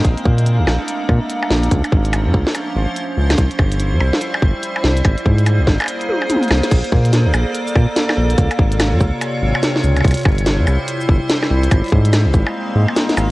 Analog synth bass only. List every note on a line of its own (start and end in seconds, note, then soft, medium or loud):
0.05 0.16 A#1 loud
0.26 0.61 A#2 loud
0.59 0.66 D2 medium
0.67 0.78 A#1 medium
1.09 1.20 A#2 loud
1.51 1.69 A#1 medium
1.71 1.82 C#2 loud
1.92 2.28 G#1 loud
2.26 2.33 F2 loud
2.34 2.45 C#2 medium
2.76 2.86 G#1 loud
3.17 3.36 C#2 medium
3.38 3.49 C2 loud
3.59 3.94 G1 loud
3.93 3.99 E2 loud
4.01 4.11 C2 medium
4.42 4.53 G1 loud
4.84 5.02 C2 medium
5.05 5.16 G#1 loud
5.26 5.61 G#2 loud
5.59 5.66 C2 loud
5.67 5.78 G#1 medium
6.51 6.61 C2 loud
6.71 6.82 A#1 loud
6.92 7.28 A#2 loud
7.26 7.33 D2 loud
7.34 7.45 A#1 medium
7.76 7.86 A#2 loud
8.17 8.36 A#1 medium
8.38 8.49 C#2 loud
8.59 8.94 G#1 loud
8.93 8.99 F2 loud
9.01 9.11 C#2 medium
9.42 9.53 G#1 loud
9.84 10.02 C#2 medium
10.05 10.16 C2 loud
10.26 10.61 G1 loud
10.59 10.66 E2 loud
10.67 10.78 C2 medium
11.09 11.20 G1 loud
11.51 11.69 C2 medium
11.71 11.82 G#1 loud
11.92 12.27 G#2 medium
12.26 12.33 C2 loud
12.34 12.45 G#1 medium
12.75 12.86 G#2 loud
13.17 13.31 G#1 medium